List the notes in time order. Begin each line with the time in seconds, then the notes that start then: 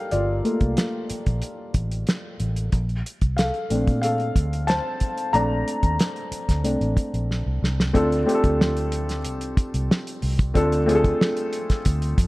Already playing: A4 A#4 F5 G5
0.11 G1 F4 D5, closed hi-hat
0.44 A3 A#3 F4, closed hi-hat
0.61 C2, kick, closed hi-hat
0.77 snare, closed hi-hat
1.10 muted fingered electric bass stroke, closed hi-hat
1.26 A#1, kick, closed hi-hat
1.42 closed hi-hat
1.74 A1, kick, closed hi-hat
1.91 closed hi-hat
2.07 snare, closed hi-hat
2.40 A1, closed hi-hat
2.56 closed hi-hat
2.72 A#1, kick, closed hi-hat
2.89 closed hi-hat
3.06 closed hi-hat
3.21 C2, kick, closed hi-hat
3.37 A4 F5, snare, closed hi-hat
3.54 closed hi-hat
3.70 A#1 A3 C4 D4, closed hi-hat
3.87 A#2, kick, closed hi-hat
4.02 A4 F5, closed hi-hat
4.20 closed hi-hat
4.36 D2, kick, closed hi-hat
4.53 closed hi-hat
4.67 C5 A5, snare, closed hi-hat
5.00 kick, closed hi-hat
5.18 closed hi-hat
5.33 A#1 A3 C4 D4 D5 A#5, closed hi-hat
5.68 closed hi-hat
5.83 D#2, kick, closed hi-hat
5.99 snare, closed hi-hat
6.16 closed hi-hat
6.31 muted fingered electric bass stroke, closed hi-hat
6.49 D2, kick, snare, closed hi-hat
6.64 C2 A3 C4 D4, closed hi-hat
6.81 A1, closed hi-hat
6.97 kick, closed hi-hat
7.14 A#1, closed hi-hat
7.31 snare
7.46 C2
7.62 C2, snare
7.80 snare
7.93 D2 A3 C4 D4 F4 A4, kick, closed hi-hat
8.12 closed hi-hat
8.25 A3 C4 D4 F4 G4, closed hi-hat
8.34 A4
8.44 D2, kick, closed hi-hat
8.61 snare
8.77 closed hi-hat
8.92 closed hi-hat
9.09 snare, closed hi-hat
9.25 C2, closed hi-hat
9.41 closed hi-hat
9.57 kick, closed hi-hat
9.74 C2, closed hi-hat
9.91 snare
10.07 closed hi-hat
10.22 C2, open hi-hat
10.39 kick, closed hi-hat
10.54 D2 A3 C4 D4 F4 A4, kick, closed hi-hat
10.72 closed hi-hat
10.86 A3 C4 D4 F4 G#4, closed hi-hat
10.95 A4
11.04 kick, closed hi-hat
11.21 snare
11.37 closed hi-hat
11.53 closed hi-hat
11.70 kick, snare, closed hi-hat
11.85 D2, kick, closed hi-hat
12.02 closed hi-hat
12.18 F2, kick, closed hi-hat